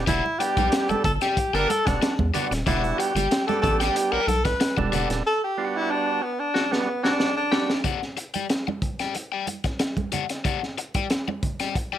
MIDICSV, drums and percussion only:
0, 0, Header, 1, 2, 480
1, 0, Start_track
1, 0, Key_signature, 1, "minor"
1, 0, Tempo, 648649
1, 57, Time_signature, 4, 2, 24, 8
1, 8868, End_track
2, 0, Start_track
2, 0, Title_t, "Drums"
2, 54, Note_on_c, 9, 42, 86
2, 55, Note_on_c, 9, 36, 120
2, 57, Note_on_c, 9, 62, 38
2, 57, Note_on_c, 9, 64, 80
2, 128, Note_off_c, 9, 42, 0
2, 129, Note_off_c, 9, 36, 0
2, 131, Note_off_c, 9, 62, 0
2, 131, Note_off_c, 9, 64, 0
2, 191, Note_on_c, 9, 62, 39
2, 265, Note_off_c, 9, 62, 0
2, 298, Note_on_c, 9, 42, 79
2, 372, Note_off_c, 9, 42, 0
2, 421, Note_on_c, 9, 42, 56
2, 422, Note_on_c, 9, 36, 100
2, 430, Note_on_c, 9, 63, 75
2, 495, Note_off_c, 9, 42, 0
2, 496, Note_off_c, 9, 36, 0
2, 504, Note_off_c, 9, 63, 0
2, 532, Note_on_c, 9, 42, 94
2, 537, Note_on_c, 9, 38, 113
2, 545, Note_on_c, 9, 62, 34
2, 606, Note_off_c, 9, 42, 0
2, 611, Note_off_c, 9, 38, 0
2, 619, Note_off_c, 9, 62, 0
2, 658, Note_on_c, 9, 42, 36
2, 676, Note_on_c, 9, 62, 41
2, 676, Note_on_c, 9, 63, 86
2, 732, Note_off_c, 9, 42, 0
2, 750, Note_off_c, 9, 62, 0
2, 750, Note_off_c, 9, 63, 0
2, 772, Note_on_c, 9, 42, 74
2, 773, Note_on_c, 9, 36, 112
2, 780, Note_on_c, 9, 64, 74
2, 846, Note_off_c, 9, 42, 0
2, 847, Note_off_c, 9, 36, 0
2, 854, Note_off_c, 9, 64, 0
2, 896, Note_on_c, 9, 42, 52
2, 902, Note_on_c, 9, 38, 34
2, 970, Note_off_c, 9, 42, 0
2, 976, Note_off_c, 9, 38, 0
2, 1014, Note_on_c, 9, 36, 92
2, 1014, Note_on_c, 9, 42, 82
2, 1088, Note_off_c, 9, 36, 0
2, 1088, Note_off_c, 9, 42, 0
2, 1143, Note_on_c, 9, 42, 35
2, 1217, Note_off_c, 9, 42, 0
2, 1256, Note_on_c, 9, 63, 66
2, 1258, Note_on_c, 9, 42, 66
2, 1330, Note_off_c, 9, 63, 0
2, 1332, Note_off_c, 9, 42, 0
2, 1382, Note_on_c, 9, 36, 102
2, 1383, Note_on_c, 9, 42, 54
2, 1391, Note_on_c, 9, 38, 36
2, 1456, Note_off_c, 9, 36, 0
2, 1457, Note_off_c, 9, 42, 0
2, 1465, Note_off_c, 9, 38, 0
2, 1496, Note_on_c, 9, 42, 90
2, 1499, Note_on_c, 9, 38, 103
2, 1500, Note_on_c, 9, 62, 43
2, 1570, Note_off_c, 9, 42, 0
2, 1573, Note_off_c, 9, 38, 0
2, 1574, Note_off_c, 9, 62, 0
2, 1620, Note_on_c, 9, 36, 75
2, 1621, Note_on_c, 9, 63, 92
2, 1694, Note_off_c, 9, 36, 0
2, 1695, Note_off_c, 9, 63, 0
2, 1733, Note_on_c, 9, 42, 76
2, 1744, Note_on_c, 9, 64, 70
2, 1807, Note_off_c, 9, 42, 0
2, 1818, Note_off_c, 9, 64, 0
2, 1864, Note_on_c, 9, 42, 62
2, 1872, Note_on_c, 9, 38, 38
2, 1938, Note_off_c, 9, 42, 0
2, 1946, Note_off_c, 9, 38, 0
2, 1973, Note_on_c, 9, 36, 127
2, 1975, Note_on_c, 9, 42, 75
2, 1977, Note_on_c, 9, 62, 37
2, 1977, Note_on_c, 9, 64, 85
2, 2047, Note_off_c, 9, 36, 0
2, 2049, Note_off_c, 9, 42, 0
2, 2051, Note_off_c, 9, 62, 0
2, 2051, Note_off_c, 9, 64, 0
2, 2101, Note_on_c, 9, 42, 35
2, 2109, Note_on_c, 9, 62, 38
2, 2175, Note_off_c, 9, 42, 0
2, 2183, Note_off_c, 9, 62, 0
2, 2218, Note_on_c, 9, 42, 83
2, 2292, Note_off_c, 9, 42, 0
2, 2340, Note_on_c, 9, 42, 66
2, 2345, Note_on_c, 9, 63, 74
2, 2414, Note_off_c, 9, 42, 0
2, 2419, Note_off_c, 9, 63, 0
2, 2452, Note_on_c, 9, 42, 92
2, 2457, Note_on_c, 9, 38, 121
2, 2526, Note_off_c, 9, 42, 0
2, 2531, Note_off_c, 9, 38, 0
2, 2578, Note_on_c, 9, 42, 35
2, 2585, Note_on_c, 9, 63, 85
2, 2652, Note_off_c, 9, 42, 0
2, 2659, Note_off_c, 9, 63, 0
2, 2691, Note_on_c, 9, 36, 115
2, 2692, Note_on_c, 9, 42, 78
2, 2693, Note_on_c, 9, 64, 75
2, 2765, Note_off_c, 9, 36, 0
2, 2766, Note_off_c, 9, 42, 0
2, 2767, Note_off_c, 9, 64, 0
2, 2817, Note_on_c, 9, 42, 56
2, 2823, Note_on_c, 9, 38, 38
2, 2891, Note_off_c, 9, 42, 0
2, 2897, Note_off_c, 9, 38, 0
2, 2930, Note_on_c, 9, 42, 89
2, 3004, Note_off_c, 9, 42, 0
2, 3169, Note_on_c, 9, 42, 66
2, 3173, Note_on_c, 9, 63, 62
2, 3243, Note_off_c, 9, 42, 0
2, 3247, Note_off_c, 9, 63, 0
2, 3293, Note_on_c, 9, 42, 53
2, 3296, Note_on_c, 9, 36, 91
2, 3300, Note_on_c, 9, 38, 35
2, 3367, Note_off_c, 9, 42, 0
2, 3370, Note_off_c, 9, 36, 0
2, 3374, Note_off_c, 9, 38, 0
2, 3407, Note_on_c, 9, 42, 86
2, 3411, Note_on_c, 9, 38, 106
2, 3481, Note_off_c, 9, 42, 0
2, 3485, Note_off_c, 9, 38, 0
2, 3534, Note_on_c, 9, 36, 77
2, 3539, Note_on_c, 9, 62, 42
2, 3539, Note_on_c, 9, 63, 89
2, 3608, Note_off_c, 9, 36, 0
2, 3613, Note_off_c, 9, 62, 0
2, 3613, Note_off_c, 9, 63, 0
2, 3645, Note_on_c, 9, 42, 75
2, 3659, Note_on_c, 9, 64, 78
2, 3719, Note_off_c, 9, 42, 0
2, 3733, Note_off_c, 9, 64, 0
2, 3774, Note_on_c, 9, 42, 65
2, 3781, Note_on_c, 9, 38, 41
2, 3848, Note_off_c, 9, 42, 0
2, 3855, Note_off_c, 9, 38, 0
2, 4850, Note_on_c, 9, 38, 59
2, 4924, Note_off_c, 9, 38, 0
2, 4978, Note_on_c, 9, 38, 58
2, 5052, Note_off_c, 9, 38, 0
2, 5214, Note_on_c, 9, 38, 67
2, 5288, Note_off_c, 9, 38, 0
2, 5327, Note_on_c, 9, 38, 88
2, 5401, Note_off_c, 9, 38, 0
2, 5568, Note_on_c, 9, 38, 115
2, 5642, Note_off_c, 9, 38, 0
2, 5696, Note_on_c, 9, 38, 98
2, 5770, Note_off_c, 9, 38, 0
2, 5803, Note_on_c, 9, 42, 71
2, 5804, Note_on_c, 9, 36, 105
2, 5807, Note_on_c, 9, 62, 32
2, 5807, Note_on_c, 9, 64, 70
2, 5877, Note_off_c, 9, 42, 0
2, 5878, Note_off_c, 9, 36, 0
2, 5881, Note_off_c, 9, 62, 0
2, 5881, Note_off_c, 9, 64, 0
2, 5938, Note_on_c, 9, 38, 35
2, 5941, Note_on_c, 9, 62, 32
2, 6012, Note_off_c, 9, 38, 0
2, 6015, Note_off_c, 9, 62, 0
2, 6047, Note_on_c, 9, 42, 73
2, 6121, Note_off_c, 9, 42, 0
2, 6169, Note_on_c, 9, 42, 54
2, 6184, Note_on_c, 9, 63, 70
2, 6243, Note_off_c, 9, 42, 0
2, 6258, Note_off_c, 9, 63, 0
2, 6285, Note_on_c, 9, 42, 76
2, 6291, Note_on_c, 9, 38, 95
2, 6359, Note_off_c, 9, 42, 0
2, 6365, Note_off_c, 9, 38, 0
2, 6424, Note_on_c, 9, 63, 79
2, 6498, Note_off_c, 9, 63, 0
2, 6526, Note_on_c, 9, 36, 93
2, 6527, Note_on_c, 9, 42, 62
2, 6531, Note_on_c, 9, 64, 59
2, 6600, Note_off_c, 9, 36, 0
2, 6601, Note_off_c, 9, 42, 0
2, 6605, Note_off_c, 9, 64, 0
2, 6653, Note_on_c, 9, 42, 42
2, 6659, Note_on_c, 9, 38, 33
2, 6727, Note_off_c, 9, 42, 0
2, 6733, Note_off_c, 9, 38, 0
2, 6767, Note_on_c, 9, 42, 74
2, 6777, Note_on_c, 9, 62, 34
2, 6841, Note_off_c, 9, 42, 0
2, 6851, Note_off_c, 9, 62, 0
2, 7008, Note_on_c, 9, 42, 61
2, 7010, Note_on_c, 9, 63, 58
2, 7082, Note_off_c, 9, 42, 0
2, 7084, Note_off_c, 9, 63, 0
2, 7132, Note_on_c, 9, 42, 44
2, 7136, Note_on_c, 9, 36, 81
2, 7140, Note_on_c, 9, 38, 32
2, 7206, Note_off_c, 9, 42, 0
2, 7210, Note_off_c, 9, 36, 0
2, 7214, Note_off_c, 9, 38, 0
2, 7247, Note_on_c, 9, 42, 83
2, 7250, Note_on_c, 9, 38, 86
2, 7253, Note_on_c, 9, 62, 35
2, 7321, Note_off_c, 9, 42, 0
2, 7324, Note_off_c, 9, 38, 0
2, 7327, Note_off_c, 9, 62, 0
2, 7376, Note_on_c, 9, 36, 68
2, 7376, Note_on_c, 9, 42, 31
2, 7381, Note_on_c, 9, 62, 41
2, 7381, Note_on_c, 9, 63, 81
2, 7450, Note_off_c, 9, 36, 0
2, 7450, Note_off_c, 9, 42, 0
2, 7455, Note_off_c, 9, 62, 0
2, 7455, Note_off_c, 9, 63, 0
2, 7488, Note_on_c, 9, 42, 67
2, 7502, Note_on_c, 9, 63, 52
2, 7502, Note_on_c, 9, 64, 75
2, 7562, Note_off_c, 9, 42, 0
2, 7576, Note_off_c, 9, 63, 0
2, 7576, Note_off_c, 9, 64, 0
2, 7616, Note_on_c, 9, 42, 51
2, 7624, Note_on_c, 9, 38, 33
2, 7690, Note_off_c, 9, 42, 0
2, 7698, Note_off_c, 9, 38, 0
2, 7732, Note_on_c, 9, 36, 109
2, 7733, Note_on_c, 9, 42, 70
2, 7736, Note_on_c, 9, 62, 33
2, 7736, Note_on_c, 9, 64, 70
2, 7806, Note_off_c, 9, 36, 0
2, 7807, Note_off_c, 9, 42, 0
2, 7810, Note_off_c, 9, 62, 0
2, 7810, Note_off_c, 9, 64, 0
2, 7867, Note_on_c, 9, 38, 34
2, 7873, Note_on_c, 9, 62, 34
2, 7941, Note_off_c, 9, 38, 0
2, 7947, Note_off_c, 9, 62, 0
2, 7976, Note_on_c, 9, 42, 71
2, 8050, Note_off_c, 9, 42, 0
2, 8097, Note_on_c, 9, 42, 55
2, 8101, Note_on_c, 9, 36, 93
2, 8109, Note_on_c, 9, 63, 64
2, 8171, Note_off_c, 9, 42, 0
2, 8175, Note_off_c, 9, 36, 0
2, 8183, Note_off_c, 9, 63, 0
2, 8213, Note_on_c, 9, 42, 75
2, 8218, Note_on_c, 9, 38, 96
2, 8224, Note_on_c, 9, 62, 33
2, 8287, Note_off_c, 9, 42, 0
2, 8292, Note_off_c, 9, 38, 0
2, 8298, Note_off_c, 9, 62, 0
2, 8348, Note_on_c, 9, 62, 36
2, 8348, Note_on_c, 9, 63, 78
2, 8422, Note_off_c, 9, 62, 0
2, 8422, Note_off_c, 9, 63, 0
2, 8456, Note_on_c, 9, 42, 67
2, 8457, Note_on_c, 9, 36, 99
2, 8459, Note_on_c, 9, 64, 71
2, 8530, Note_off_c, 9, 42, 0
2, 8531, Note_off_c, 9, 36, 0
2, 8533, Note_off_c, 9, 64, 0
2, 8579, Note_on_c, 9, 42, 47
2, 8585, Note_on_c, 9, 38, 31
2, 8653, Note_off_c, 9, 42, 0
2, 8659, Note_off_c, 9, 38, 0
2, 8698, Note_on_c, 9, 36, 88
2, 8698, Note_on_c, 9, 42, 70
2, 8772, Note_off_c, 9, 36, 0
2, 8772, Note_off_c, 9, 42, 0
2, 8830, Note_on_c, 9, 62, 31
2, 8868, Note_off_c, 9, 62, 0
2, 8868, End_track
0, 0, End_of_file